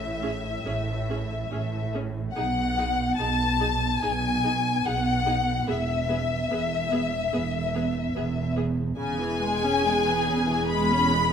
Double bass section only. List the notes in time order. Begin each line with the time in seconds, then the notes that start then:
Already playing: A1
0.63 A1
1.50 A1
2.34 B1
3.17 B1
4.00 B1
4.84 B1
5.67 E1
6.51 E1
7.33 E1
8.16 E1
8.99 E1